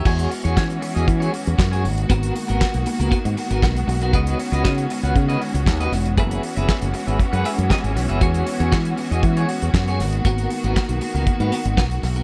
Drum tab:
CC |x---------------|----------------|----------------|----------------|
HH |-xox-xoxxxox-xox|xxox-xoxxxox-xox|xxox-xoxxxox-xox|xxox-xoxxxox-xox|
CP |----x-------x---|----x-------x---|----x-------x---|----x-------x---|
SD |----o-------o---|----o-------o---|----o-------o-o-|----o-------o-o-|
BD |o---o---o---o---|o---o---o---o---|o---o---o---o---|o---o---o---o---|

CC |----------------|----------------|
HH |xxox-xoxxxox-xox|xxox-xoxxxox-xox|
CP |----x-------x---|----x-------x---|
SD |----o-------o-o-|----o-------o-o-|
BD |o---o---o---o---|o---o---o---o---|